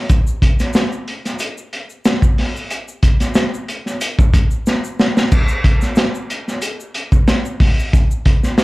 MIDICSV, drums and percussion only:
0, 0, Header, 1, 2, 480
1, 0, Start_track
1, 0, Tempo, 652884
1, 76, Time_signature, 4, 2, 24, 8
1, 6351, End_track
2, 0, Start_track
2, 0, Title_t, "Drums"
2, 70, Note_on_c, 9, 42, 85
2, 70, Note_on_c, 9, 82, 69
2, 71, Note_on_c, 9, 36, 112
2, 144, Note_off_c, 9, 42, 0
2, 144, Note_off_c, 9, 82, 0
2, 145, Note_off_c, 9, 36, 0
2, 198, Note_on_c, 9, 82, 61
2, 272, Note_off_c, 9, 82, 0
2, 309, Note_on_c, 9, 36, 93
2, 313, Note_on_c, 9, 42, 86
2, 383, Note_off_c, 9, 36, 0
2, 386, Note_off_c, 9, 42, 0
2, 436, Note_on_c, 9, 82, 61
2, 440, Note_on_c, 9, 42, 49
2, 442, Note_on_c, 9, 38, 38
2, 509, Note_off_c, 9, 82, 0
2, 513, Note_off_c, 9, 42, 0
2, 516, Note_off_c, 9, 38, 0
2, 538, Note_on_c, 9, 82, 70
2, 552, Note_on_c, 9, 38, 105
2, 555, Note_on_c, 9, 42, 81
2, 612, Note_off_c, 9, 82, 0
2, 625, Note_off_c, 9, 38, 0
2, 628, Note_off_c, 9, 42, 0
2, 679, Note_on_c, 9, 82, 49
2, 752, Note_off_c, 9, 82, 0
2, 791, Note_on_c, 9, 42, 75
2, 865, Note_off_c, 9, 42, 0
2, 922, Note_on_c, 9, 42, 51
2, 923, Note_on_c, 9, 38, 31
2, 926, Note_on_c, 9, 82, 54
2, 996, Note_off_c, 9, 38, 0
2, 996, Note_off_c, 9, 42, 0
2, 1000, Note_off_c, 9, 82, 0
2, 1021, Note_on_c, 9, 82, 79
2, 1029, Note_on_c, 9, 42, 97
2, 1094, Note_off_c, 9, 82, 0
2, 1103, Note_off_c, 9, 42, 0
2, 1158, Note_on_c, 9, 82, 56
2, 1231, Note_off_c, 9, 82, 0
2, 1270, Note_on_c, 9, 42, 77
2, 1344, Note_off_c, 9, 42, 0
2, 1393, Note_on_c, 9, 82, 46
2, 1467, Note_off_c, 9, 82, 0
2, 1506, Note_on_c, 9, 82, 83
2, 1510, Note_on_c, 9, 42, 81
2, 1511, Note_on_c, 9, 38, 106
2, 1579, Note_off_c, 9, 82, 0
2, 1584, Note_off_c, 9, 38, 0
2, 1584, Note_off_c, 9, 42, 0
2, 1634, Note_on_c, 9, 36, 89
2, 1638, Note_on_c, 9, 82, 58
2, 1708, Note_off_c, 9, 36, 0
2, 1712, Note_off_c, 9, 82, 0
2, 1751, Note_on_c, 9, 46, 70
2, 1755, Note_on_c, 9, 38, 34
2, 1824, Note_off_c, 9, 46, 0
2, 1828, Note_off_c, 9, 38, 0
2, 1884, Note_on_c, 9, 82, 43
2, 1957, Note_off_c, 9, 82, 0
2, 1988, Note_on_c, 9, 42, 81
2, 1990, Note_on_c, 9, 82, 68
2, 2062, Note_off_c, 9, 42, 0
2, 2063, Note_off_c, 9, 82, 0
2, 2118, Note_on_c, 9, 82, 62
2, 2192, Note_off_c, 9, 82, 0
2, 2225, Note_on_c, 9, 42, 87
2, 2227, Note_on_c, 9, 36, 88
2, 2236, Note_on_c, 9, 82, 49
2, 2298, Note_off_c, 9, 42, 0
2, 2300, Note_off_c, 9, 36, 0
2, 2309, Note_off_c, 9, 82, 0
2, 2354, Note_on_c, 9, 42, 54
2, 2356, Note_on_c, 9, 38, 37
2, 2362, Note_on_c, 9, 82, 56
2, 2427, Note_off_c, 9, 42, 0
2, 2429, Note_off_c, 9, 38, 0
2, 2435, Note_off_c, 9, 82, 0
2, 2457, Note_on_c, 9, 82, 74
2, 2466, Note_on_c, 9, 38, 112
2, 2469, Note_on_c, 9, 42, 82
2, 2530, Note_off_c, 9, 82, 0
2, 2540, Note_off_c, 9, 38, 0
2, 2543, Note_off_c, 9, 42, 0
2, 2602, Note_on_c, 9, 82, 54
2, 2676, Note_off_c, 9, 82, 0
2, 2709, Note_on_c, 9, 42, 77
2, 2716, Note_on_c, 9, 82, 49
2, 2782, Note_off_c, 9, 42, 0
2, 2790, Note_off_c, 9, 82, 0
2, 2839, Note_on_c, 9, 38, 29
2, 2849, Note_on_c, 9, 82, 58
2, 2912, Note_off_c, 9, 38, 0
2, 2923, Note_off_c, 9, 82, 0
2, 2947, Note_on_c, 9, 82, 87
2, 2948, Note_on_c, 9, 42, 100
2, 3021, Note_off_c, 9, 82, 0
2, 3022, Note_off_c, 9, 42, 0
2, 3078, Note_on_c, 9, 36, 106
2, 3083, Note_on_c, 9, 82, 51
2, 3151, Note_off_c, 9, 36, 0
2, 3157, Note_off_c, 9, 82, 0
2, 3187, Note_on_c, 9, 82, 50
2, 3188, Note_on_c, 9, 36, 104
2, 3190, Note_on_c, 9, 42, 78
2, 3260, Note_off_c, 9, 82, 0
2, 3261, Note_off_c, 9, 36, 0
2, 3263, Note_off_c, 9, 42, 0
2, 3314, Note_on_c, 9, 82, 51
2, 3387, Note_off_c, 9, 82, 0
2, 3429, Note_on_c, 9, 82, 87
2, 3434, Note_on_c, 9, 38, 56
2, 3502, Note_off_c, 9, 82, 0
2, 3508, Note_off_c, 9, 38, 0
2, 3559, Note_on_c, 9, 82, 62
2, 3632, Note_off_c, 9, 82, 0
2, 3672, Note_on_c, 9, 82, 47
2, 3673, Note_on_c, 9, 38, 94
2, 3745, Note_off_c, 9, 82, 0
2, 3746, Note_off_c, 9, 38, 0
2, 3801, Note_on_c, 9, 38, 83
2, 3802, Note_on_c, 9, 82, 50
2, 3874, Note_off_c, 9, 38, 0
2, 3875, Note_off_c, 9, 82, 0
2, 3908, Note_on_c, 9, 82, 76
2, 3910, Note_on_c, 9, 49, 94
2, 3911, Note_on_c, 9, 36, 108
2, 3982, Note_off_c, 9, 82, 0
2, 3984, Note_off_c, 9, 36, 0
2, 3984, Note_off_c, 9, 49, 0
2, 4030, Note_on_c, 9, 82, 65
2, 4103, Note_off_c, 9, 82, 0
2, 4149, Note_on_c, 9, 36, 94
2, 4149, Note_on_c, 9, 42, 82
2, 4222, Note_off_c, 9, 36, 0
2, 4222, Note_off_c, 9, 42, 0
2, 4274, Note_on_c, 9, 82, 62
2, 4282, Note_on_c, 9, 38, 35
2, 4347, Note_off_c, 9, 82, 0
2, 4355, Note_off_c, 9, 38, 0
2, 4377, Note_on_c, 9, 82, 78
2, 4390, Note_on_c, 9, 38, 106
2, 4393, Note_on_c, 9, 42, 78
2, 4451, Note_off_c, 9, 82, 0
2, 4463, Note_off_c, 9, 38, 0
2, 4466, Note_off_c, 9, 42, 0
2, 4518, Note_on_c, 9, 82, 50
2, 4592, Note_off_c, 9, 82, 0
2, 4632, Note_on_c, 9, 42, 79
2, 4635, Note_on_c, 9, 82, 46
2, 4706, Note_off_c, 9, 42, 0
2, 4708, Note_off_c, 9, 82, 0
2, 4763, Note_on_c, 9, 38, 30
2, 4769, Note_on_c, 9, 82, 62
2, 4836, Note_off_c, 9, 38, 0
2, 4842, Note_off_c, 9, 82, 0
2, 4864, Note_on_c, 9, 82, 81
2, 4865, Note_on_c, 9, 42, 95
2, 4938, Note_off_c, 9, 82, 0
2, 4939, Note_off_c, 9, 42, 0
2, 5000, Note_on_c, 9, 82, 58
2, 5074, Note_off_c, 9, 82, 0
2, 5105, Note_on_c, 9, 42, 83
2, 5179, Note_off_c, 9, 42, 0
2, 5235, Note_on_c, 9, 36, 90
2, 5236, Note_on_c, 9, 82, 50
2, 5309, Note_off_c, 9, 36, 0
2, 5310, Note_off_c, 9, 82, 0
2, 5349, Note_on_c, 9, 42, 85
2, 5350, Note_on_c, 9, 38, 97
2, 5350, Note_on_c, 9, 82, 75
2, 5423, Note_off_c, 9, 38, 0
2, 5423, Note_off_c, 9, 42, 0
2, 5424, Note_off_c, 9, 82, 0
2, 5478, Note_on_c, 9, 82, 56
2, 5552, Note_off_c, 9, 82, 0
2, 5588, Note_on_c, 9, 36, 94
2, 5588, Note_on_c, 9, 46, 80
2, 5592, Note_on_c, 9, 38, 35
2, 5661, Note_off_c, 9, 46, 0
2, 5662, Note_off_c, 9, 36, 0
2, 5666, Note_off_c, 9, 38, 0
2, 5730, Note_on_c, 9, 82, 49
2, 5803, Note_off_c, 9, 82, 0
2, 5833, Note_on_c, 9, 36, 96
2, 5833, Note_on_c, 9, 42, 72
2, 5840, Note_on_c, 9, 82, 71
2, 5906, Note_off_c, 9, 36, 0
2, 5906, Note_off_c, 9, 42, 0
2, 5913, Note_off_c, 9, 82, 0
2, 5962, Note_on_c, 9, 82, 63
2, 6036, Note_off_c, 9, 82, 0
2, 6069, Note_on_c, 9, 42, 88
2, 6071, Note_on_c, 9, 36, 89
2, 6143, Note_off_c, 9, 42, 0
2, 6145, Note_off_c, 9, 36, 0
2, 6201, Note_on_c, 9, 38, 38
2, 6204, Note_on_c, 9, 82, 52
2, 6274, Note_off_c, 9, 38, 0
2, 6278, Note_off_c, 9, 82, 0
2, 6306, Note_on_c, 9, 38, 113
2, 6308, Note_on_c, 9, 82, 69
2, 6309, Note_on_c, 9, 42, 77
2, 6351, Note_off_c, 9, 38, 0
2, 6351, Note_off_c, 9, 42, 0
2, 6351, Note_off_c, 9, 82, 0
2, 6351, End_track
0, 0, End_of_file